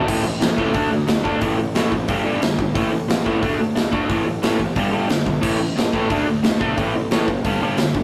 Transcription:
0.07 A1 A2 E3 A3, kick, crash
0.24 A2 E3
0.40 A1 A2 E3, snare, open hi-hat
0.57 C#2 A2 E3 A3, kick
0.74 D2 D3 A3 D4, kick, open hi-hat
0.91 D2 D3 A3
1.07 D2 D3 A3, snare, open hi-hat
1.24 D2 D3 A3 D4, kick
1.41 A1 A2 E3 A3, kick, open hi-hat
1.58 A1 A2 E3
1.75 A1 A2 E3 A3, snare, open hi-hat
1.92 A1 A2 E3, kick
2.08 G1 G2 D3 G3, kick, open hi-hat
2.25 G1 G2 D3 G3
2.41 G1 G2 D3, snare, open hi-hat
2.58 G1 G2 D3, kick
2.75 A1 A2 E3 A3, kick, open hi-hat
2.91 A2 E3
3.08 A1 A2 E3, snare, open hi-hat
3.25 A1 A2 E3 A3, kick
3.42 D2 D3 A3 D4, kick, open hi-hat
3.58 D2 D3 A3
3.75 D2 D3 A3, snare, open hi-hat
3.91 D2 D3 A3 D4, kick
4.09 A1 A2 E3 A3, kick, open hi-hat
4.25 A1 A2 E3
4.42 A1 A2 E3 A3, snare, open hi-hat
4.58 A1 A2 E3, kick
4.76 G1 G2 D3 G3, kick, open hi-hat
4.91 G1 G2 D3 G3
5.09 G1 G2 D3, snare, open hi-hat
5.26 B1 G2 D3, kick
5.41 A1 A2 E3 A3, kick, crash
5.59 A2 E3
5.76 A1 A2 E3, snare, open hi-hat
5.93 A1 A2 E3 A3, kick
6.10 D2 D3 A3 D4, kick, open hi-hat
6.27 D2 D3 A3
6.43 D2 D3 A3, snare, open hi-hat
6.60 B1 D3 A3 D4, kick
6.77 A1 A2 E3 A3, kick, open hi-hat
6.95 A1 A2 E3
7.11 A1 A2 E3 A3, snare, open hi-hat
7.28 F#1 A2 E3, kick
7.44 G1 G2 D3 G3, kick, open hi-hat
7.61 G1 G2 D3 G3
7.77 G1 G2 D3, snare, open hi-hat
7.95 G1 G2 D3, kick

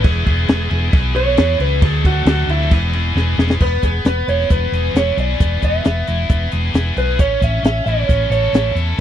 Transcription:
0.03 E1 B3 E4 G#4, kick, crash
0.26 E1 B3 E4 G#4, kick, crash
0.47 E1 B3 E4 G#4, snare, crash
0.70 E1 B3 E4 G#4, crash
0.91 B1 B3 E4 G#4, kick, crash
1.14 B3 E4 G#4 C#5, crash
1.37 E2 B3 E4 G#4, snare, crash
1.59 C#2 B3 E4 G#4 B4, crash
1.82 D2 F#3 A3 D4 G#4 A4, kick, crash
2.05 F#3 A3 D4 F#4 A4, kick, crash
2.25 D2 F#3 A3 D4 F#4 A4, snare, crash
2.47 D2 F#3 A3 D4 E4 A4, crash
2.62 snare
2.71 E1 E3 B3 E4 G#4, kick, crash
2.93 E3 B3 E4 G#4, snare, crash
3.15 E1 E3 B3 E4 G#4, snare
3.38 E1 E3 B3 E4 G#4, snare
3.50 snare
3.60 E1 B3 B4, kick, crash
3.83 E1 B3 G#4, kick, closed hi-hat
4.04 E1 B3 B4, snare, closed hi-hat
4.28 E1 E4 C#5, closed hi-hat
4.41 snare
4.50 E1 B3 B4, kick, closed hi-hat
4.72 E1 G#4, snare, closed hi-hat
4.94 E1 E4 C#5, snare, closed hi-hat
5.17 B1 G#4 D5, closed hi-hat
5.40 E1 B3, kick, closed hi-hat
5.62 E1 B3 E5, kick, closed hi-hat
5.85 E1 B3, snare, closed hi-hat
6.07 E1 E4, closed hi-hat
6.29 E1 B3, kick, closed hi-hat
6.52 E1 G#4, closed hi-hat
6.74 E1 E4, snare, closed hi-hat
6.96 B1 G#4 B4, closed hi-hat
7.19 A1 C#4 C#5, kick, closed hi-hat
7.41 A1 C#4 E5, kick, closed hi-hat
7.63 A1 C#4 E5, snare, closed hi-hat
7.86 A1 E4 C#5, closed hi-hat
8.08 A1 C#4, kick, closed hi-hat
8.30 A1 A4 C#5, closed hi-hat
8.53 A1 E4, snare, closed hi-hat
8.75 E2 A4, closed hi-hat

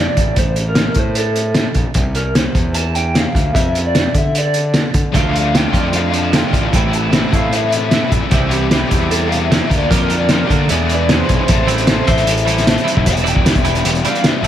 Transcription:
0.00 D5
0.17 A1, kick, closed hi-hat
0.36 A1 C5, kick, closed hi-hat
0.56 closed hi-hat
0.69 A#4
0.75 snare, closed hi-hat
0.94 A2, kick, closed hi-hat
0.99 C5
1.15 A4, closed hi-hat
1.36 closed hi-hat
1.54 snare, closed hi-hat
1.74 A#1, kick, closed hi-hat
1.94 C2, kick, closed hi-hat
2.15 A#4, closed hi-hat
2.35 C5, snare, closed hi-hat
2.55 E2, kick, closed hi-hat
2.74 A5, closed hi-hat
2.95 G5, closed hi-hat
3.15 F5, snare, closed hi-hat
3.35 D2, kick, closed hi-hat
3.54 F2 E5, kick, closed hi-hat
3.75 closed hi-hat
3.86 D5
3.95 snare, closed hi-hat
4.14 D3 E5, kick, closed hi-hat
4.35 D5, closed hi-hat
4.54 closed hi-hat
4.74 snare, closed hi-hat
4.94 D3, kick, closed hi-hat
5.12 D2 D3 F3 A3 D4 F4 F5, kick, closed hi-hat
5.17 D4 F4
5.33 A3 D4 F4 F5, closed hi-hat
5.52 D3 F3 A3 D4 F4, snare, closed hi-hat
5.57 F4 G5
5.73 F2 A3 D4 F4, kick, closed hi-hat
5.77 A3
5.92 F3 A3 D4 F4 F5, closed hi-hat
6.12 A3 D4 F4, closed hi-hat
6.18 A5
6.32 D3 F3 A3 D4 F4 G5, snare, closed hi-hat
6.52 A1 A3 D4 F4, kick, closed hi-hat
6.72 A1 A2 E3 A3 C4 E4 G5, kick, closed hi-hat
6.76 E4
6.91 C4 E4, closed hi-hat
6.96 A5
7.10 E3 A3 C4 E4, snare, closed hi-hat
7.15 E4
7.31 A2 C4 E4, kick, closed hi-hat
7.35 A3 F5
7.51 E3 C4 E4, closed hi-hat
7.56 E5
7.70 C4 E4, closed hi-hat
7.76 E5
7.89 A2 E3 C4 E4, snare, closed hi-hat
7.93 E3 A3 C4 E4
8.09 A#1 C4 E4, kick, closed hi-hat
8.13 A3 C4
8.29 C2 C3 E3 G3 C4 E4 G4, kick, closed hi-hat
8.33 C4 E4
8.49 C4 E4 G4, closed hi-hat
8.70 E3 G3 C4 E4 G4, snare, closed hi-hat
8.74 E4
8.90 E2 G3 C4 E4 G4, kick, closed hi-hat
9.09 E3 C4 E4 G4 A4, closed hi-hat
9.29 C4 E4 G4 F5, closed hi-hat
9.38 E5
9.50 C3 E3 G3 C4 E4 G4, snare, closed hi-hat
9.69 D2 F3 A#3 D4 F4 A#4, kick, closed hi-hat
9.74 D3
9.78 D5
9.89 F2 D3 F3 A#3 D4 A#4, kick, closed hi-hat
9.93 F4
10.10 A#3 D4 A#4, closed hi-hat
10.18 D5
10.29 D3 F3 A#3 D4 F4 A#4, snare, closed hi-hat
10.46 D3 D4 F4 G4 A#4
10.50 A#3 D4 A4, kick, closed hi-hat
10.68 E2 B2 E3 G#3 B3 D4 G#4, closed hi-hat
10.72 E4
10.89 D4 G#4, closed hi-hat
10.94 B4 D5
11.09 E2 B2 E3 G#3 B3 D4 E4 G#4, snare, closed hi-hat
11.16 C5
11.27 B1 E3 G#3 D4 E4 G#4, kick, closed hi-hat
11.47 A1 C4 E4 A4, kick, closed hi-hat
11.52 A4 C5
11.67 E3 G3 C4 E4, closed hi-hat
11.78 closed hi-hat
11.87 C4 E4 A4, snare, closed hi-hat
11.91 A4 C5
12.07 A1 E3 G3 C4 E4 A4 C5 E5, kick, closed hi-hat
12.18 closed hi-hat
12.27 closed hi-hat
12.37 closed hi-hat
12.45 E3 G3 C4 E4 A4, closed hi-hat
12.50 E4
12.58 snare, closed hi-hat
12.67 C4 E4 A4 C5 E5, snare, closed hi-hat
12.78 closed hi-hat
12.84 E3 G3 C4 E4, closed hi-hat
12.97 B1, kick
13.05 E1 G3 B3 E4 E5 A5, kick, closed hi-hat
13.17 closed hi-hat
13.24 E3 G3 D4 E4 E5, closed hi-hat
13.29 G5
13.36 E1, kick
13.44 G3 B3 E4, snare, closed hi-hat
13.55 E1, kick, closed hi-hat
13.64 E3 G3 B3 D4 E4, closed hi-hat
13.75 closed hi-hat
13.84 E1, closed hi-hat
13.95 closed hi-hat
14.05 E3 G3 B3 D4 E4 D5 F5, closed hi-hat
14.15 closed hi-hat
14.24 G3 B3 E4 C5 E5, snare, closed hi-hat
14.43 A1 G3 E4, closed hi-hat

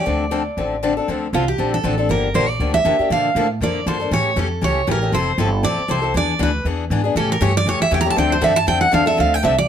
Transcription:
Already playing: D5
0.06 D2 D3 F3 C4 D4 A4
0.31 D3 F3 C4 D4 A4
0.57 A1 D3 F3 C4 D4 A4
0.83 D3 F3 C4 D4 A4
0.97 C4 D4 A4
1.08 D2 D3 F3 C4 D4 A4
1.33 C2 D3 F3 C4 D4 F4 A4
1.48 G4
1.58 A#1 D3 F3 C4 D4 A4
1.74 A4
1.84 A1 D3 F3 C4 D4 A4
1.98 C4 D4 A4
2.09 G1 D3 F3 A#3 D4 G4 A#4
2.34 A#1 D3 F3 A#3 D4 G4 C5
2.48 D5
2.60 D2 D3 F3 A#3 D4 G4
2.74 E5
2.85 F2 D3 F3 A#3 D4 G4
2.99 A#3 D4 G4, muted upright bass stroke
3.10 A#2 D3 F3 A#3 D4 A4 F5
3.35 A2 D3 F3 A#3 D4 A4
3.60 F2 D3 F3 A#3 D4 A4 D5
3.86 G2 D3 F3 A#3 D4 A4 C5
4.00 A#3 D4 A4
4.11 A2 C#3 E3 A3 C#4 G4 C#5
4.36 F2 C#3 E3 A3 C#4 G4 A4
4.61 C#2 C#3 E3 A3 C#4 G4 C#5
4.87 A1 C#3 E3 A3 C#4 G4
4.91 A#4
5.01 A3 C#4 G4
5.12 F1 F3 C4 E4 A4 C5
5.38 G1 F3 C4 E4 A4
5.63 A1 F3 C4 E4 A4 D5
5.77 muted upright bass stroke
5.88 C2 F3 C4 E4 A4 C5
6.02 C4 E4 A4
6.14 E2 E3 B3 D4 G#4 D5
6.39 D2 E3 B3 D4 G#4 B4
6.64 E2 E3 B3 D4 G#4
6.90 G#2 E3 B3 D4 G#4
7.04 B3 D4 G#4
7.15 A2 C#3 E3 A3 C#4 G4 A4
7.32 A#4
7.41 G2 C#3 E3 A3 C#4 G4 C#5
7.57 D5
7.66 F2 C#3 E3 A3 C#4 G4 C#5
7.80 E5, muted upright bass stroke
7.91 E2 C#3 E3 A3 C#4 G4 G5
8.01 G4 A#5
8.06 A3 C#4
8.10 A5
8.16 D2 D3 F3 C4 D4 A4 G5
8.32 C5
8.41 G2 D3 F3 C4 D4 A4 E5
8.56 A5
8.67 F2 D3 F3 C4 D4 A4 G5
8.81 F#5
8.92 E2 D3 F3 C4 D4 A4 F5
9.06 C4 D4 A4 E5
9.17 D2 D3 F3 C4 D4 A4 F5
9.34 G5
9.42 C2 D3 F3 C4 D4 A4 E5
9.58 D5

